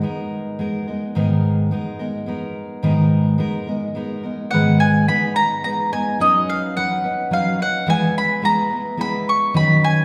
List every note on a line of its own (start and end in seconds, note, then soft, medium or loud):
0.00 0.58 G#3 medium
0.00 0.58 B3 medium
0.00 0.59 D#4 medium
0.00 0.82 A#5 medium
0.04 0.59 A#4 medium
0.59 0.87 G#3 medium
0.59 0.87 B3 medium
0.59 0.87 D#4 medium
0.59 0.86 A#4 medium
0.88 1.15 G#3 soft
0.88 1.15 B3 soft
0.88 1.16 D#4 soft
0.88 1.15 A#4 soft
1.15 1.71 G#2 medium
1.15 1.71 D#3 medium
1.15 1.71 G#3 medium
1.15 1.71 B3 medium
1.15 1.72 D#4 medium
1.15 1.72 A#4 medium
1.71 1.99 G#3 medium
1.71 1.99 B3 medium
1.71 1.99 D#4 medium
1.71 1.98 A#4 medium
1.99 2.25 G#3 soft
1.99 2.26 B3 soft
1.99 2.27 D#4 medium
1.99 2.27 A#4 medium
2.26 2.83 G#3 medium
2.26 2.83 B3 medium
2.26 2.84 D#4 medium
2.26 2.83 A#4 medium
2.83 3.39 G#2 medium
2.83 3.39 D#3 medium
2.83 3.37 G#3 medium
2.83 3.37 B3 medium
2.83 3.38 D#4 medium
2.83 3.39 A#4 medium
3.38 3.66 G#3 medium
3.38 3.67 B3 medium
3.38 3.67 D#4 medium
3.38 3.66 A#4 medium
3.67 3.94 G#3 soft
3.67 3.94 B3 soft
3.67 3.95 D#4 soft
3.67 3.95 A#4 medium
3.95 4.23 G#3 medium
3.95 4.23 B3 medium
3.95 4.23 D#4 medium
3.95 4.22 A#4 medium
4.23 4.52 G#3 soft
4.23 4.52 B3 soft
4.23 4.52 D#4 soft
4.23 4.51 A#4 medium
4.51 5.08 G#2 medium
4.51 5.08 D#3 medium
4.51 5.07 G#3 medium
4.51 5.08 B3 medium
4.51 5.09 D#4 medium
4.51 5.10 B4 loud
4.51 4.77 F#5 medium
4.80 5.08 G#5 medium
5.08 5.62 G#3 medium
5.08 5.65 B3 medium
5.08 5.64 D#4 medium
5.08 5.66 B4 medium
5.08 5.34 B5 medium
5.36 5.63 A#5 loud
5.64 5.91 G#3 medium
5.64 5.92 B3 medium
5.64 5.91 D#4 medium
5.64 5.91 B4 medium
5.64 5.92 A#5 medium
5.92 6.19 G#3 soft
5.92 6.20 B3 soft
5.92 6.19 D#4 soft
5.92 6.20 B4 soft
5.92 6.18 G#5 medium
6.19 6.75 F#3 medium
6.19 6.76 C#4 medium
6.19 6.76 D#4 medium
6.19 6.78 B4 medium
6.19 6.49 D#5 medium
6.49 6.76 F5 medium
6.76 7.04 F#3 medium
6.76 7.04 C#4 medium
6.76 7.04 D#4 medium
6.76 7.03 B4 medium
6.76 7.33 F#5 medium
7.04 7.30 C#4 soft
7.04 7.31 D#4 medium
7.04 7.31 B4 medium
7.31 7.59 F#3 medium
7.31 7.59 C#4 medium
7.31 7.59 D#4 medium
7.31 7.58 B4 medium
7.31 7.61 F5 medium
7.59 7.87 C#4 soft
7.59 7.87 D#4 soft
7.59 7.87 B4 soft
7.59 7.89 F#5 medium
7.86 8.43 E3 medium
7.86 8.41 G#3 medium
7.86 8.42 B3 medium
7.86 8.42 E4 medium
7.86 8.43 B4 medium
7.86 8.14 G#5 loud
8.18 8.45 B5 loud
8.42 8.70 G#3 medium
8.42 8.71 B3 medium
8.42 8.70 E4 medium
8.42 8.69 B4 medium
8.42 9.01 A#5 loud
8.70 8.97 B3 soft
8.70 8.97 E4 soft
8.70 8.98 B4 medium
8.97 9.54 G#3 medium
8.97 9.54 B3 medium
8.97 9.55 E4 medium
8.97 9.55 B4 medium
8.97 9.29 B5 loud
9.29 9.54 C#6 medium
9.54 10.05 D#3 medium
9.54 10.05 F#3 medium
9.54 10.05 C#4 medium
9.54 10.05 D#4 medium
9.54 10.05 B4 medium
9.54 9.84 B5 loud
9.84 10.05 G#5 loud